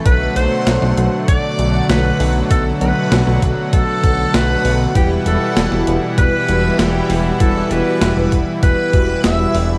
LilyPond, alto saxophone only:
\new Staff \with { instrumentName = "Alto saxophone" } { \time 4/4 \key b \phrygian \tempo 4 = 98 b'8 c''4 r8 d''4 b'8. r16 | a'8 b'4 r8 a'4 b'8. r16 | g'8 a'4 r8 b'4 g'8. r16 | a'8 b'4 r8 b'4 e''8. r16 | }